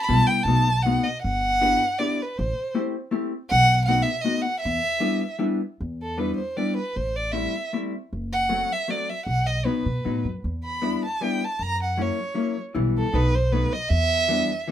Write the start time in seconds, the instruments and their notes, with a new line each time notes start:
0.01 violin B5
0.06 upright bass B1, hollow-body jazz guitar G3 B3 E4 G4, violin A5
0.27 violin G5
0.43 upright bass B1, violin A5
0.47 hollow-body jazz guitar A3 B3 D#4 F#4
0.82 hollow-body jazz guitar A3 D#4, violin F#5
0.86 hollow-body jazz guitar B3 F#4
1.03 violin D#5
1.22 upright bass G1, violin F#5
1.61 hollow-body jazz guitar B3 D4 E4 G4
1.99 hollow-body jazz guitar B3 D4 E4 G4, violin D5
2.22 violin B4
2.37 upright bass A1, violin C5
2.75 hollow-body jazz guitar A3 C4 E4 G4
3.11 hollow-body jazz guitar A3 C4 E4 G4
3.50 upright bass B1, violin F#5
3.86 hollow-body jazz guitar A3 B3 D#4 F#4, violin F#5
4.02 violin E5
4.21 hollow-body jazz guitar A3 B3, violin D#5
4.25 hollow-body jazz guitar D#4 F#4
4.42 violin F#5
4.60 violin E5
4.65 upright bass E2
5.00 hollow-body jazz guitar G3 B3 D4 E4
5.39 hollow-body jazz guitar G3 B3 D4 E4
5.80 upright bass E2
6.02 violin A4
6.18 hollow-body jazz guitar G3 B3 D4 E4, violin B4
6.37 violin C5
6.56 hollow-body jazz guitar G3 B3 D4 E4, violin D5
6.77 violin B4
6.96 upright bass A1, violin C5
7.16 violin D5
7.32 hollow-body jazz guitar G3 A3 C4 E4, violin E5
7.73 hollow-body jazz guitar G3 A3 C4 E4
8.13 upright bass F#1
8.33 violin F#5
8.49 hollow-body jazz guitar F#3 A3 C4 F#4
8.72 violin E5
8.88 hollow-body jazz guitar F#3 A3 C4 F#4, violin D5
9.09 violin E5
9.26 upright bass B1, violin F#5
9.46 violin D#5
9.65 hollow-body jazz guitar F#3 B3 D#4 F#4, violin B4
9.86 upright bass B2
10.05 upright bass A2, hollow-body jazz guitar F#3 B3 D#4 F#4
10.25 upright bass F#2
10.44 upright bass E2
10.64 violin B5
10.82 hollow-body jazz guitar G3 B3 D4 E4
11.06 violin A5
11.21 hollow-body jazz guitar G3 B3 D4 E4, violin G5
11.44 violin A5
11.59 upright bass F#2, violin A#5
11.83 violin F#5
11.97 hollow-body jazz guitar F#3 A#3 C#4 E4
12.02 violin C#5
12.35 hollow-body jazz guitar F#3 A#3 C#4 E4
12.75 upright bass B1, hollow-body jazz guitar E3 G3 B3 E4
12.98 violin A4
13.13 upright bass B1, hollow-body jazz guitar F#3 A3 B3 D#4, violin B4
13.35 violin C5
13.52 hollow-body jazz guitar F#3 A3 B3 D#4, violin B4
13.73 violin D#5
13.89 upright bass E2, violin E5
14.28 hollow-body jazz guitar E3 G3 B3 D4
14.68 hollow-body jazz guitar E3